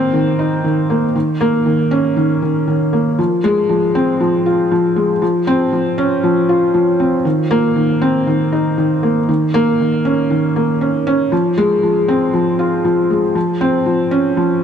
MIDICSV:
0, 0, Header, 1, 2, 480
1, 0, Start_track
1, 0, Key_signature, -4, "minor"
1, 0, Tempo, 508475
1, 1086, Time_signature, 4, 2, 24, 8
1, 13816, End_track
2, 0, Start_track
2, 0, Title_t, "Felt piano"
2, 0, Program_c, 0, 0
2, 0, Control_c, 0, 64, 127
2, 0, Note_on_c, 0, 51, 70
2, 0, Note_on_c, 0, 58, 103
2, 0, Note_on_c, 0, 60, 104
2, 116, Note_off_c, 0, 60, 0
2, 128, Note_off_c, 0, 51, 0
2, 128, Note_on_c, 0, 51, 85
2, 355, Note_off_c, 0, 51, 0
2, 367, Note_on_c, 0, 63, 76
2, 595, Note_off_c, 0, 63, 0
2, 607, Note_on_c, 0, 51, 76
2, 834, Note_off_c, 0, 51, 0
2, 848, Note_off_c, 0, 58, 0
2, 848, Note_on_c, 0, 58, 74
2, 984, Note_off_c, 0, 58, 0
2, 1091, Note_on_c, 0, 51, 84
2, 1100, Control_c, 0, 64, 0
2, 1249, Control_c, 0, 64, 127
2, 1316, Note_off_c, 0, 51, 0
2, 1328, Note_on_c, 0, 58, 103
2, 1555, Note_off_c, 0, 58, 0
2, 1566, Note_on_c, 0, 51, 71
2, 1794, Note_off_c, 0, 51, 0
2, 1804, Note_on_c, 0, 61, 97
2, 2033, Note_off_c, 0, 61, 0
2, 2045, Note_on_c, 0, 51, 84
2, 2272, Note_off_c, 0, 51, 0
2, 2287, Note_on_c, 0, 51, 72
2, 2512, Note_off_c, 0, 51, 0
2, 2526, Note_on_c, 0, 51, 72
2, 2754, Note_off_c, 0, 51, 0
2, 2764, Note_on_c, 0, 58, 73
2, 2993, Note_off_c, 0, 58, 0
2, 3008, Note_on_c, 0, 53, 75
2, 3019, Control_c, 0, 64, 0
2, 3199, Control_c, 0, 64, 127
2, 3235, Note_off_c, 0, 53, 0
2, 3247, Note_on_c, 0, 56, 107
2, 3474, Note_off_c, 0, 56, 0
2, 3485, Note_on_c, 0, 53, 71
2, 3714, Note_off_c, 0, 53, 0
2, 3729, Note_on_c, 0, 60, 95
2, 3955, Note_off_c, 0, 60, 0
2, 3969, Note_on_c, 0, 53, 82
2, 4195, Note_off_c, 0, 53, 0
2, 4209, Note_on_c, 0, 65, 75
2, 4435, Note_off_c, 0, 65, 0
2, 4451, Note_on_c, 0, 53, 78
2, 4677, Note_off_c, 0, 53, 0
2, 4685, Note_on_c, 0, 56, 77
2, 4822, Note_off_c, 0, 56, 0
2, 4926, Note_on_c, 0, 53, 81
2, 4938, Control_c, 0, 64, 0
2, 5103, Control_c, 0, 64, 127
2, 5154, Note_off_c, 0, 53, 0
2, 5166, Note_on_c, 0, 60, 99
2, 5394, Note_off_c, 0, 60, 0
2, 5405, Note_on_c, 0, 53, 74
2, 5633, Note_off_c, 0, 53, 0
2, 5645, Note_on_c, 0, 61, 97
2, 5873, Note_off_c, 0, 61, 0
2, 5886, Note_on_c, 0, 53, 81
2, 6114, Note_off_c, 0, 53, 0
2, 6127, Note_on_c, 0, 65, 79
2, 6354, Note_off_c, 0, 65, 0
2, 6363, Note_on_c, 0, 53, 76
2, 6592, Note_off_c, 0, 53, 0
2, 6605, Note_on_c, 0, 60, 77
2, 6742, Note_off_c, 0, 60, 0
2, 6844, Note_on_c, 0, 51, 80
2, 6857, Control_c, 0, 64, 0
2, 6993, Control_c, 0, 64, 127
2, 7073, Note_off_c, 0, 51, 0
2, 7086, Note_on_c, 0, 58, 105
2, 7314, Note_off_c, 0, 58, 0
2, 7326, Note_on_c, 0, 51, 74
2, 7554, Note_off_c, 0, 51, 0
2, 7567, Note_on_c, 0, 60, 99
2, 7794, Note_off_c, 0, 60, 0
2, 7808, Note_on_c, 0, 51, 84
2, 8035, Note_off_c, 0, 51, 0
2, 8047, Note_on_c, 0, 63, 79
2, 8274, Note_off_c, 0, 63, 0
2, 8287, Note_on_c, 0, 51, 77
2, 8514, Note_off_c, 0, 51, 0
2, 8525, Note_on_c, 0, 58, 74
2, 8662, Note_off_c, 0, 58, 0
2, 8766, Note_on_c, 0, 51, 82
2, 8780, Control_c, 0, 64, 0
2, 8930, Control_c, 0, 64, 127
2, 8994, Note_off_c, 0, 51, 0
2, 9007, Note_on_c, 0, 58, 105
2, 9234, Note_off_c, 0, 58, 0
2, 9250, Note_on_c, 0, 51, 72
2, 9476, Note_off_c, 0, 51, 0
2, 9488, Note_on_c, 0, 61, 94
2, 9715, Note_off_c, 0, 61, 0
2, 9726, Note_on_c, 0, 51, 79
2, 9954, Note_off_c, 0, 51, 0
2, 9969, Note_on_c, 0, 58, 80
2, 10104, Note_off_c, 0, 58, 0
2, 10206, Note_on_c, 0, 61, 80
2, 10434, Note_off_c, 0, 61, 0
2, 10448, Note_on_c, 0, 61, 101
2, 10675, Note_off_c, 0, 61, 0
2, 10686, Note_on_c, 0, 53, 86
2, 10699, Control_c, 0, 64, 0
2, 10866, Control_c, 0, 64, 127
2, 10914, Note_off_c, 0, 53, 0
2, 10927, Note_on_c, 0, 56, 110
2, 11154, Note_off_c, 0, 56, 0
2, 11168, Note_on_c, 0, 53, 71
2, 11395, Note_off_c, 0, 53, 0
2, 11407, Note_on_c, 0, 60, 92
2, 11635, Note_off_c, 0, 60, 0
2, 11645, Note_on_c, 0, 53, 83
2, 11874, Note_off_c, 0, 53, 0
2, 11885, Note_on_c, 0, 65, 77
2, 12113, Note_off_c, 0, 65, 0
2, 12127, Note_on_c, 0, 53, 77
2, 12354, Note_off_c, 0, 53, 0
2, 12370, Note_on_c, 0, 56, 75
2, 12505, Note_off_c, 0, 56, 0
2, 12606, Note_on_c, 0, 53, 85
2, 12620, Control_c, 0, 64, 0
2, 12760, Control_c, 0, 64, 127
2, 12834, Note_off_c, 0, 53, 0
2, 12847, Note_on_c, 0, 60, 102
2, 13074, Note_off_c, 0, 60, 0
2, 13086, Note_on_c, 0, 53, 70
2, 13314, Note_off_c, 0, 53, 0
2, 13322, Note_on_c, 0, 61, 94
2, 13552, Note_off_c, 0, 61, 0
2, 13565, Note_on_c, 0, 53, 85
2, 13793, Note_off_c, 0, 53, 0
2, 13816, End_track
0, 0, End_of_file